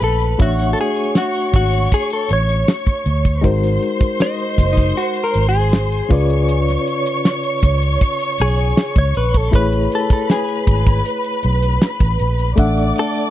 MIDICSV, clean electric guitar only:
0, 0, Header, 1, 2, 480
1, 0, Start_track
1, 0, Tempo, 761421
1, 250, Time_signature, 4, 2, 24, 8
1, 8385, End_track
2, 0, Start_track
2, 0, Title_t, "Clean electric guitar"
2, 0, Program_c, 0, 27
2, 23, Note_on_c, 0, 69, 84
2, 240, Note_off_c, 0, 69, 0
2, 265, Note_on_c, 0, 66, 83
2, 440, Note_off_c, 0, 66, 0
2, 462, Note_on_c, 0, 69, 66
2, 498, Note_off_c, 0, 69, 0
2, 509, Note_on_c, 0, 68, 96
2, 739, Note_off_c, 0, 68, 0
2, 742, Note_on_c, 0, 66, 78
2, 975, Note_off_c, 0, 66, 0
2, 982, Note_on_c, 0, 66, 80
2, 1200, Note_off_c, 0, 66, 0
2, 1223, Note_on_c, 0, 68, 107
2, 1340, Note_off_c, 0, 68, 0
2, 1344, Note_on_c, 0, 69, 83
2, 1461, Note_off_c, 0, 69, 0
2, 1468, Note_on_c, 0, 73, 102
2, 2154, Note_off_c, 0, 73, 0
2, 2660, Note_on_c, 0, 75, 105
2, 2979, Note_on_c, 0, 63, 75
2, 2985, Note_off_c, 0, 75, 0
2, 3133, Note_off_c, 0, 63, 0
2, 3135, Note_on_c, 0, 66, 103
2, 3297, Note_off_c, 0, 66, 0
2, 3301, Note_on_c, 0, 70, 86
2, 3456, Note_off_c, 0, 70, 0
2, 3459, Note_on_c, 0, 68, 85
2, 4149, Note_off_c, 0, 68, 0
2, 5305, Note_on_c, 0, 68, 86
2, 5661, Note_off_c, 0, 68, 0
2, 5664, Note_on_c, 0, 73, 87
2, 5769, Note_off_c, 0, 73, 0
2, 5782, Note_on_c, 0, 71, 84
2, 5906, Note_off_c, 0, 71, 0
2, 5906, Note_on_c, 0, 69, 86
2, 6021, Note_off_c, 0, 69, 0
2, 6023, Note_on_c, 0, 71, 90
2, 6240, Note_off_c, 0, 71, 0
2, 6273, Note_on_c, 0, 69, 83
2, 6373, Note_off_c, 0, 69, 0
2, 6385, Note_on_c, 0, 69, 72
2, 6498, Note_off_c, 0, 69, 0
2, 6501, Note_on_c, 0, 68, 63
2, 6950, Note_off_c, 0, 68, 0
2, 8191, Note_on_c, 0, 69, 94
2, 8385, Note_off_c, 0, 69, 0
2, 8385, End_track
0, 0, End_of_file